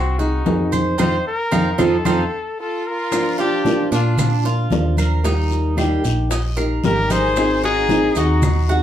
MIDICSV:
0, 0, Header, 1, 8, 480
1, 0, Start_track
1, 0, Key_signature, -2, "major"
1, 0, Tempo, 530973
1, 900, Time_signature, 4, 2, 24, 8
1, 7981, End_track
2, 0, Start_track
2, 0, Title_t, "Trumpet"
2, 0, Program_c, 0, 56
2, 0, Note_on_c, 0, 66, 82
2, 174, Note_on_c, 0, 63, 79
2, 188, Note_off_c, 0, 66, 0
2, 657, Note_off_c, 0, 63, 0
2, 901, Note_on_c, 0, 72, 99
2, 1124, Note_off_c, 0, 72, 0
2, 1151, Note_on_c, 0, 70, 96
2, 1625, Note_on_c, 0, 69, 81
2, 1639, Note_off_c, 0, 70, 0
2, 2344, Note_off_c, 0, 69, 0
2, 2356, Note_on_c, 0, 69, 84
2, 2596, Note_on_c, 0, 70, 94
2, 2610, Note_off_c, 0, 69, 0
2, 3064, Note_off_c, 0, 70, 0
2, 3070, Note_on_c, 0, 67, 96
2, 3512, Note_off_c, 0, 67, 0
2, 3563, Note_on_c, 0, 65, 75
2, 4000, Note_off_c, 0, 65, 0
2, 6202, Note_on_c, 0, 70, 103
2, 6438, Note_on_c, 0, 72, 105
2, 6452, Note_off_c, 0, 70, 0
2, 6909, Note_off_c, 0, 72, 0
2, 6914, Note_on_c, 0, 68, 105
2, 7389, Note_on_c, 0, 66, 87
2, 7403, Note_off_c, 0, 68, 0
2, 7864, Note_off_c, 0, 66, 0
2, 7981, End_track
3, 0, Start_track
3, 0, Title_t, "Cuban tres"
3, 0, Program_c, 1, 25
3, 0, Note_on_c, 1, 60, 81
3, 163, Note_off_c, 1, 60, 0
3, 174, Note_on_c, 1, 66, 71
3, 643, Note_off_c, 1, 66, 0
3, 652, Note_on_c, 1, 72, 71
3, 886, Note_on_c, 1, 60, 88
3, 889, Note_off_c, 1, 72, 0
3, 891, Note_on_c, 1, 63, 78
3, 898, Note_on_c, 1, 65, 84
3, 1047, Note_off_c, 1, 60, 0
3, 1048, Note_off_c, 1, 63, 0
3, 1049, Note_off_c, 1, 65, 0
3, 1368, Note_on_c, 1, 60, 84
3, 1371, Note_on_c, 1, 63, 92
3, 1376, Note_on_c, 1, 65, 80
3, 1528, Note_off_c, 1, 60, 0
3, 1528, Note_off_c, 1, 63, 0
3, 1528, Note_off_c, 1, 65, 0
3, 1610, Note_on_c, 1, 65, 87
3, 1613, Note_on_c, 1, 63, 94
3, 1615, Note_on_c, 1, 60, 77
3, 1769, Note_off_c, 1, 60, 0
3, 1770, Note_off_c, 1, 63, 0
3, 1770, Note_off_c, 1, 65, 0
3, 1855, Note_on_c, 1, 60, 76
3, 1857, Note_on_c, 1, 63, 80
3, 1861, Note_on_c, 1, 65, 72
3, 2012, Note_off_c, 1, 60, 0
3, 2012, Note_off_c, 1, 63, 0
3, 2012, Note_off_c, 1, 65, 0
3, 3056, Note_on_c, 1, 65, 74
3, 3524, Note_off_c, 1, 65, 0
3, 3543, Note_on_c, 1, 62, 92
3, 4008, Note_off_c, 1, 62, 0
3, 4026, Note_on_c, 1, 65, 73
3, 4489, Note_off_c, 1, 65, 0
3, 4503, Note_on_c, 1, 70, 77
3, 4735, Note_off_c, 1, 70, 0
3, 4740, Note_on_c, 1, 63, 83
3, 5206, Note_off_c, 1, 63, 0
3, 5223, Note_on_c, 1, 67, 69
3, 5687, Note_off_c, 1, 67, 0
3, 5701, Note_on_c, 1, 75, 64
3, 5934, Note_off_c, 1, 75, 0
3, 5937, Note_on_c, 1, 70, 73
3, 6404, Note_off_c, 1, 70, 0
3, 6422, Note_on_c, 1, 63, 87
3, 6886, Note_off_c, 1, 63, 0
3, 6903, Note_on_c, 1, 66, 71
3, 7366, Note_off_c, 1, 66, 0
3, 7382, Note_on_c, 1, 63, 89
3, 7846, Note_off_c, 1, 63, 0
3, 7857, Note_on_c, 1, 66, 77
3, 7981, Note_off_c, 1, 66, 0
3, 7981, End_track
4, 0, Start_track
4, 0, Title_t, "Violin section"
4, 0, Program_c, 2, 48
4, 2348, Note_on_c, 2, 65, 74
4, 2569, Note_off_c, 2, 65, 0
4, 2594, Note_on_c, 2, 65, 91
4, 3065, Note_on_c, 2, 62, 82
4, 3068, Note_off_c, 2, 65, 0
4, 3510, Note_off_c, 2, 62, 0
4, 3550, Note_on_c, 2, 62, 62
4, 3992, Note_off_c, 2, 62, 0
4, 6192, Note_on_c, 2, 67, 81
4, 6409, Note_off_c, 2, 67, 0
4, 6427, Note_on_c, 2, 68, 93
4, 6903, Note_off_c, 2, 68, 0
4, 6909, Note_on_c, 2, 63, 83
4, 7351, Note_off_c, 2, 63, 0
4, 7390, Note_on_c, 2, 63, 69
4, 7864, Note_off_c, 2, 63, 0
4, 7981, End_track
5, 0, Start_track
5, 0, Title_t, "Nylon-string guitar"
5, 0, Program_c, 3, 24
5, 167, Note_on_c, 3, 68, 48
5, 181, Note_on_c, 3, 63, 46
5, 188, Note_on_c, 3, 60, 36
5, 401, Note_off_c, 3, 60, 0
5, 403, Note_off_c, 3, 63, 0
5, 403, Note_on_c, 3, 51, 64
5, 404, Note_off_c, 3, 68, 0
5, 412, Note_on_c, 3, 60, 68
5, 414, Note_on_c, 3, 63, 69
5, 423, Note_on_c, 3, 68, 81
5, 882, Note_off_c, 3, 60, 0
5, 883, Note_off_c, 3, 51, 0
5, 884, Note_off_c, 3, 63, 0
5, 891, Note_on_c, 3, 60, 76
5, 893, Note_off_c, 3, 68, 0
5, 896, Note_on_c, 3, 63, 85
5, 896, Note_on_c, 3, 65, 83
5, 1049, Note_off_c, 3, 65, 0
5, 1050, Note_off_c, 3, 60, 0
5, 1051, Note_off_c, 3, 63, 0
5, 1368, Note_on_c, 3, 60, 92
5, 1369, Note_on_c, 3, 63, 92
5, 1375, Note_on_c, 3, 65, 94
5, 1527, Note_off_c, 3, 63, 0
5, 1527, Note_off_c, 3, 65, 0
5, 1528, Note_off_c, 3, 60, 0
5, 1615, Note_on_c, 3, 60, 83
5, 1621, Note_on_c, 3, 65, 78
5, 1622, Note_on_c, 3, 63, 82
5, 1772, Note_off_c, 3, 60, 0
5, 1774, Note_off_c, 3, 63, 0
5, 1775, Note_off_c, 3, 65, 0
5, 1859, Note_on_c, 3, 60, 91
5, 1865, Note_on_c, 3, 65, 81
5, 1866, Note_on_c, 3, 63, 85
5, 2015, Note_off_c, 3, 60, 0
5, 2016, Note_off_c, 3, 63, 0
5, 2017, Note_off_c, 3, 65, 0
5, 2812, Note_on_c, 3, 53, 71
5, 2820, Note_on_c, 3, 58, 63
5, 2823, Note_on_c, 3, 62, 74
5, 2833, Note_on_c, 3, 65, 73
5, 3286, Note_off_c, 3, 53, 0
5, 3291, Note_off_c, 3, 58, 0
5, 3293, Note_off_c, 3, 62, 0
5, 3296, Note_on_c, 3, 53, 68
5, 3298, Note_off_c, 3, 65, 0
5, 3307, Note_on_c, 3, 58, 78
5, 3312, Note_on_c, 3, 62, 75
5, 3318, Note_on_c, 3, 65, 86
5, 3529, Note_off_c, 3, 65, 0
5, 3530, Note_off_c, 3, 53, 0
5, 3535, Note_off_c, 3, 58, 0
5, 3537, Note_off_c, 3, 62, 0
5, 3540, Note_on_c, 3, 65, 45
5, 3547, Note_on_c, 3, 62, 42
5, 3561, Note_on_c, 3, 58, 40
5, 3769, Note_off_c, 3, 58, 0
5, 3771, Note_off_c, 3, 62, 0
5, 3771, Note_off_c, 3, 65, 0
5, 4007, Note_on_c, 3, 65, 48
5, 4022, Note_on_c, 3, 62, 45
5, 4027, Note_on_c, 3, 58, 39
5, 4244, Note_off_c, 3, 65, 0
5, 4246, Note_off_c, 3, 58, 0
5, 4247, Note_on_c, 3, 53, 71
5, 4252, Note_off_c, 3, 62, 0
5, 4257, Note_on_c, 3, 58, 70
5, 4262, Note_on_c, 3, 62, 79
5, 4266, Note_on_c, 3, 65, 77
5, 4725, Note_off_c, 3, 53, 0
5, 4727, Note_off_c, 3, 58, 0
5, 4728, Note_on_c, 3, 51, 75
5, 4732, Note_off_c, 3, 62, 0
5, 4734, Note_off_c, 3, 65, 0
5, 4735, Note_on_c, 3, 55, 73
5, 4738, Note_on_c, 3, 58, 68
5, 4738, Note_on_c, 3, 63, 71
5, 4743, Note_on_c, 3, 67, 84
5, 5201, Note_off_c, 3, 51, 0
5, 5204, Note_off_c, 3, 55, 0
5, 5204, Note_off_c, 3, 58, 0
5, 5210, Note_off_c, 3, 63, 0
5, 5212, Note_off_c, 3, 67, 0
5, 5212, Note_on_c, 3, 51, 68
5, 5215, Note_on_c, 3, 55, 74
5, 5215, Note_on_c, 3, 58, 74
5, 5220, Note_on_c, 3, 63, 75
5, 5226, Note_on_c, 3, 67, 76
5, 5444, Note_off_c, 3, 67, 0
5, 5447, Note_off_c, 3, 51, 0
5, 5448, Note_off_c, 3, 55, 0
5, 5448, Note_off_c, 3, 58, 0
5, 5451, Note_off_c, 3, 63, 0
5, 5455, Note_on_c, 3, 67, 47
5, 5470, Note_on_c, 3, 63, 43
5, 5476, Note_on_c, 3, 58, 39
5, 5688, Note_off_c, 3, 67, 0
5, 5695, Note_off_c, 3, 63, 0
5, 5696, Note_off_c, 3, 58, 0
5, 5942, Note_on_c, 3, 67, 52
5, 5952, Note_on_c, 3, 63, 44
5, 5963, Note_on_c, 3, 58, 40
5, 6171, Note_off_c, 3, 67, 0
5, 6177, Note_off_c, 3, 63, 0
5, 6179, Note_off_c, 3, 58, 0
5, 6181, Note_on_c, 3, 51, 63
5, 6182, Note_on_c, 3, 55, 78
5, 6190, Note_on_c, 3, 58, 76
5, 6194, Note_on_c, 3, 63, 71
5, 6194, Note_on_c, 3, 67, 81
5, 6650, Note_off_c, 3, 51, 0
5, 6651, Note_off_c, 3, 55, 0
5, 6655, Note_off_c, 3, 58, 0
5, 6657, Note_off_c, 3, 63, 0
5, 6657, Note_off_c, 3, 67, 0
5, 6661, Note_on_c, 3, 51, 70
5, 6665, Note_on_c, 3, 54, 70
5, 6666, Note_on_c, 3, 60, 75
5, 6671, Note_on_c, 3, 63, 81
5, 6677, Note_on_c, 3, 68, 82
5, 7121, Note_off_c, 3, 51, 0
5, 7127, Note_off_c, 3, 54, 0
5, 7130, Note_off_c, 3, 60, 0
5, 7132, Note_on_c, 3, 51, 69
5, 7134, Note_off_c, 3, 63, 0
5, 7138, Note_on_c, 3, 54, 66
5, 7139, Note_off_c, 3, 68, 0
5, 7141, Note_on_c, 3, 60, 74
5, 7144, Note_on_c, 3, 63, 83
5, 7151, Note_on_c, 3, 68, 82
5, 7365, Note_off_c, 3, 68, 0
5, 7366, Note_off_c, 3, 51, 0
5, 7369, Note_off_c, 3, 54, 0
5, 7370, Note_off_c, 3, 60, 0
5, 7372, Note_off_c, 3, 63, 0
5, 7376, Note_on_c, 3, 68, 52
5, 7381, Note_on_c, 3, 63, 45
5, 7394, Note_on_c, 3, 60, 36
5, 7608, Note_off_c, 3, 68, 0
5, 7611, Note_off_c, 3, 63, 0
5, 7617, Note_off_c, 3, 60, 0
5, 7852, Note_on_c, 3, 68, 48
5, 7861, Note_on_c, 3, 63, 44
5, 7867, Note_on_c, 3, 60, 42
5, 7981, Note_off_c, 3, 60, 0
5, 7981, Note_off_c, 3, 63, 0
5, 7981, Note_off_c, 3, 68, 0
5, 7981, End_track
6, 0, Start_track
6, 0, Title_t, "FM bass"
6, 0, Program_c, 4, 39
6, 0, Note_on_c, 4, 36, 99
6, 382, Note_off_c, 4, 36, 0
6, 422, Note_on_c, 4, 41, 86
6, 868, Note_off_c, 4, 41, 0
6, 899, Note_on_c, 4, 41, 89
6, 1079, Note_off_c, 4, 41, 0
6, 1386, Note_on_c, 4, 41, 94
6, 1563, Note_off_c, 4, 41, 0
6, 1630, Note_on_c, 4, 41, 97
6, 1804, Note_off_c, 4, 41, 0
6, 1865, Note_on_c, 4, 41, 85
6, 2042, Note_off_c, 4, 41, 0
6, 3544, Note_on_c, 4, 46, 97
6, 4227, Note_off_c, 4, 46, 0
6, 4264, Note_on_c, 4, 39, 87
6, 5402, Note_off_c, 4, 39, 0
6, 5468, Note_on_c, 4, 34, 96
6, 6148, Note_off_c, 4, 34, 0
6, 6184, Note_on_c, 4, 32, 89
6, 7321, Note_off_c, 4, 32, 0
6, 7382, Note_on_c, 4, 39, 96
6, 7981, Note_off_c, 4, 39, 0
6, 7981, End_track
7, 0, Start_track
7, 0, Title_t, "Muted nylon-string guitar strokes"
7, 3778, Note_on_c, 9, 29, 71
7, 3868, Note_off_c, 9, 29, 0
7, 5703, Note_on_c, 9, 29, 64
7, 5793, Note_off_c, 9, 29, 0
7, 7624, Note_on_c, 9, 29, 67
7, 7715, Note_off_c, 9, 29, 0
7, 7981, End_track
8, 0, Start_track
8, 0, Title_t, "Drums"
8, 176, Note_on_c, 9, 70, 28
8, 180, Note_on_c, 9, 60, 33
8, 180, Note_on_c, 9, 63, 30
8, 267, Note_off_c, 9, 70, 0
8, 270, Note_off_c, 9, 60, 0
8, 271, Note_off_c, 9, 63, 0
8, 416, Note_on_c, 9, 60, 32
8, 416, Note_on_c, 9, 61, 81
8, 416, Note_on_c, 9, 63, 78
8, 416, Note_on_c, 9, 70, 25
8, 506, Note_off_c, 9, 63, 0
8, 506, Note_off_c, 9, 70, 0
8, 507, Note_off_c, 9, 60, 0
8, 507, Note_off_c, 9, 61, 0
8, 657, Note_on_c, 9, 60, 30
8, 657, Note_on_c, 9, 70, 63
8, 658, Note_on_c, 9, 75, 64
8, 660, Note_on_c, 9, 63, 82
8, 747, Note_off_c, 9, 70, 0
8, 748, Note_off_c, 9, 60, 0
8, 749, Note_off_c, 9, 75, 0
8, 751, Note_off_c, 9, 63, 0
8, 892, Note_on_c, 9, 70, 89
8, 900, Note_on_c, 9, 75, 87
8, 901, Note_on_c, 9, 61, 84
8, 903, Note_on_c, 9, 63, 88
8, 982, Note_off_c, 9, 70, 0
8, 990, Note_off_c, 9, 75, 0
8, 991, Note_off_c, 9, 61, 0
8, 993, Note_off_c, 9, 63, 0
8, 1377, Note_on_c, 9, 61, 90
8, 1377, Note_on_c, 9, 75, 85
8, 1379, Note_on_c, 9, 63, 98
8, 1379, Note_on_c, 9, 70, 83
8, 1467, Note_off_c, 9, 61, 0
8, 1467, Note_off_c, 9, 75, 0
8, 1470, Note_off_c, 9, 63, 0
8, 1470, Note_off_c, 9, 70, 0
8, 1616, Note_on_c, 9, 63, 88
8, 1618, Note_on_c, 9, 61, 95
8, 1619, Note_on_c, 9, 75, 85
8, 1620, Note_on_c, 9, 70, 79
8, 1706, Note_off_c, 9, 63, 0
8, 1708, Note_off_c, 9, 61, 0
8, 1709, Note_off_c, 9, 75, 0
8, 1711, Note_off_c, 9, 70, 0
8, 1855, Note_on_c, 9, 63, 98
8, 1856, Note_on_c, 9, 61, 83
8, 1860, Note_on_c, 9, 75, 88
8, 1862, Note_on_c, 9, 70, 101
8, 1946, Note_off_c, 9, 63, 0
8, 1947, Note_off_c, 9, 61, 0
8, 1951, Note_off_c, 9, 75, 0
8, 1952, Note_off_c, 9, 70, 0
8, 2818, Note_on_c, 9, 63, 34
8, 2821, Note_on_c, 9, 60, 64
8, 2822, Note_on_c, 9, 70, 83
8, 2828, Note_on_c, 9, 74, 69
8, 2830, Note_on_c, 9, 75, 60
8, 2909, Note_off_c, 9, 63, 0
8, 2912, Note_off_c, 9, 60, 0
8, 2912, Note_off_c, 9, 70, 0
8, 2918, Note_off_c, 9, 74, 0
8, 2920, Note_off_c, 9, 75, 0
8, 3061, Note_on_c, 9, 60, 35
8, 3065, Note_on_c, 9, 63, 35
8, 3070, Note_on_c, 9, 70, 28
8, 3151, Note_off_c, 9, 60, 0
8, 3156, Note_off_c, 9, 63, 0
8, 3160, Note_off_c, 9, 70, 0
8, 3299, Note_on_c, 9, 63, 60
8, 3306, Note_on_c, 9, 60, 61
8, 3309, Note_on_c, 9, 73, 65
8, 3315, Note_on_c, 9, 70, 28
8, 3389, Note_off_c, 9, 63, 0
8, 3396, Note_off_c, 9, 60, 0
8, 3400, Note_off_c, 9, 73, 0
8, 3405, Note_off_c, 9, 70, 0
8, 3534, Note_on_c, 9, 63, 34
8, 3546, Note_on_c, 9, 70, 61
8, 3549, Note_on_c, 9, 60, 34
8, 3553, Note_on_c, 9, 73, 69
8, 3624, Note_off_c, 9, 63, 0
8, 3637, Note_off_c, 9, 70, 0
8, 3640, Note_off_c, 9, 60, 0
8, 3644, Note_off_c, 9, 73, 0
8, 3776, Note_on_c, 9, 63, 36
8, 3776, Note_on_c, 9, 64, 81
8, 3782, Note_on_c, 9, 70, 99
8, 3786, Note_on_c, 9, 60, 66
8, 3786, Note_on_c, 9, 74, 67
8, 3788, Note_on_c, 9, 75, 67
8, 3866, Note_off_c, 9, 63, 0
8, 3866, Note_off_c, 9, 64, 0
8, 3873, Note_off_c, 9, 70, 0
8, 3876, Note_off_c, 9, 60, 0
8, 3876, Note_off_c, 9, 74, 0
8, 3878, Note_off_c, 9, 75, 0
8, 4017, Note_on_c, 9, 63, 35
8, 4025, Note_on_c, 9, 60, 34
8, 4025, Note_on_c, 9, 70, 29
8, 4108, Note_off_c, 9, 63, 0
8, 4115, Note_off_c, 9, 60, 0
8, 4115, Note_off_c, 9, 70, 0
8, 4253, Note_on_c, 9, 63, 73
8, 4263, Note_on_c, 9, 70, 28
8, 4263, Note_on_c, 9, 73, 73
8, 4269, Note_on_c, 9, 60, 35
8, 4269, Note_on_c, 9, 61, 89
8, 4343, Note_off_c, 9, 63, 0
8, 4354, Note_off_c, 9, 70, 0
8, 4354, Note_off_c, 9, 73, 0
8, 4359, Note_off_c, 9, 60, 0
8, 4359, Note_off_c, 9, 61, 0
8, 4493, Note_on_c, 9, 63, 69
8, 4504, Note_on_c, 9, 75, 69
8, 4505, Note_on_c, 9, 70, 64
8, 4506, Note_on_c, 9, 73, 68
8, 4583, Note_off_c, 9, 63, 0
8, 4595, Note_off_c, 9, 75, 0
8, 4596, Note_off_c, 9, 70, 0
8, 4597, Note_off_c, 9, 73, 0
8, 4739, Note_on_c, 9, 63, 32
8, 4743, Note_on_c, 9, 74, 64
8, 4745, Note_on_c, 9, 70, 87
8, 4747, Note_on_c, 9, 60, 62
8, 4830, Note_off_c, 9, 63, 0
8, 4834, Note_off_c, 9, 74, 0
8, 4835, Note_off_c, 9, 70, 0
8, 4838, Note_off_c, 9, 60, 0
8, 4980, Note_on_c, 9, 63, 37
8, 4982, Note_on_c, 9, 70, 27
8, 4987, Note_on_c, 9, 60, 34
8, 5071, Note_off_c, 9, 63, 0
8, 5073, Note_off_c, 9, 70, 0
8, 5077, Note_off_c, 9, 60, 0
8, 5218, Note_on_c, 9, 63, 63
8, 5222, Note_on_c, 9, 75, 63
8, 5224, Note_on_c, 9, 60, 59
8, 5225, Note_on_c, 9, 70, 28
8, 5231, Note_on_c, 9, 73, 60
8, 5308, Note_off_c, 9, 63, 0
8, 5313, Note_off_c, 9, 75, 0
8, 5314, Note_off_c, 9, 60, 0
8, 5316, Note_off_c, 9, 70, 0
8, 5321, Note_off_c, 9, 73, 0
8, 5459, Note_on_c, 9, 60, 34
8, 5463, Note_on_c, 9, 63, 35
8, 5465, Note_on_c, 9, 70, 65
8, 5467, Note_on_c, 9, 73, 68
8, 5550, Note_off_c, 9, 60, 0
8, 5553, Note_off_c, 9, 63, 0
8, 5556, Note_off_c, 9, 70, 0
8, 5557, Note_off_c, 9, 73, 0
8, 5702, Note_on_c, 9, 63, 37
8, 5702, Note_on_c, 9, 74, 64
8, 5703, Note_on_c, 9, 60, 68
8, 5705, Note_on_c, 9, 70, 98
8, 5792, Note_off_c, 9, 63, 0
8, 5793, Note_off_c, 9, 60, 0
8, 5793, Note_off_c, 9, 74, 0
8, 5796, Note_off_c, 9, 70, 0
8, 5942, Note_on_c, 9, 60, 33
8, 5942, Note_on_c, 9, 63, 34
8, 5944, Note_on_c, 9, 75, 59
8, 5947, Note_on_c, 9, 70, 29
8, 6032, Note_off_c, 9, 60, 0
8, 6032, Note_off_c, 9, 63, 0
8, 6034, Note_off_c, 9, 75, 0
8, 6038, Note_off_c, 9, 70, 0
8, 6179, Note_on_c, 9, 73, 70
8, 6181, Note_on_c, 9, 63, 76
8, 6186, Note_on_c, 9, 70, 26
8, 6187, Note_on_c, 9, 60, 34
8, 6187, Note_on_c, 9, 61, 89
8, 6270, Note_off_c, 9, 73, 0
8, 6271, Note_off_c, 9, 63, 0
8, 6276, Note_off_c, 9, 70, 0
8, 6277, Note_off_c, 9, 60, 0
8, 6277, Note_off_c, 9, 61, 0
8, 6420, Note_on_c, 9, 63, 79
8, 6420, Note_on_c, 9, 70, 69
8, 6420, Note_on_c, 9, 73, 73
8, 6510, Note_off_c, 9, 73, 0
8, 6511, Note_off_c, 9, 63, 0
8, 6511, Note_off_c, 9, 70, 0
8, 6657, Note_on_c, 9, 70, 84
8, 6658, Note_on_c, 9, 63, 33
8, 6658, Note_on_c, 9, 74, 61
8, 6663, Note_on_c, 9, 75, 66
8, 6664, Note_on_c, 9, 60, 73
8, 6747, Note_off_c, 9, 70, 0
8, 6748, Note_off_c, 9, 63, 0
8, 6748, Note_off_c, 9, 74, 0
8, 6753, Note_off_c, 9, 75, 0
8, 6754, Note_off_c, 9, 60, 0
8, 6896, Note_on_c, 9, 63, 35
8, 6899, Note_on_c, 9, 70, 30
8, 6908, Note_on_c, 9, 60, 33
8, 6986, Note_off_c, 9, 63, 0
8, 6989, Note_off_c, 9, 70, 0
8, 6999, Note_off_c, 9, 60, 0
8, 7131, Note_on_c, 9, 63, 65
8, 7138, Note_on_c, 9, 60, 59
8, 7140, Note_on_c, 9, 70, 30
8, 7144, Note_on_c, 9, 73, 65
8, 7222, Note_off_c, 9, 63, 0
8, 7229, Note_off_c, 9, 60, 0
8, 7231, Note_off_c, 9, 70, 0
8, 7234, Note_off_c, 9, 73, 0
8, 7372, Note_on_c, 9, 63, 36
8, 7372, Note_on_c, 9, 70, 69
8, 7381, Note_on_c, 9, 73, 69
8, 7383, Note_on_c, 9, 60, 36
8, 7462, Note_off_c, 9, 63, 0
8, 7463, Note_off_c, 9, 70, 0
8, 7471, Note_off_c, 9, 73, 0
8, 7473, Note_off_c, 9, 60, 0
8, 7615, Note_on_c, 9, 63, 35
8, 7615, Note_on_c, 9, 64, 84
8, 7616, Note_on_c, 9, 70, 99
8, 7620, Note_on_c, 9, 75, 66
8, 7621, Note_on_c, 9, 60, 66
8, 7622, Note_on_c, 9, 74, 65
8, 7705, Note_off_c, 9, 63, 0
8, 7705, Note_off_c, 9, 64, 0
8, 7707, Note_off_c, 9, 70, 0
8, 7710, Note_off_c, 9, 75, 0
8, 7712, Note_off_c, 9, 60, 0
8, 7713, Note_off_c, 9, 74, 0
8, 7852, Note_on_c, 9, 63, 32
8, 7857, Note_on_c, 9, 70, 31
8, 7868, Note_on_c, 9, 60, 33
8, 7942, Note_off_c, 9, 63, 0
8, 7948, Note_off_c, 9, 70, 0
8, 7959, Note_off_c, 9, 60, 0
8, 7981, End_track
0, 0, End_of_file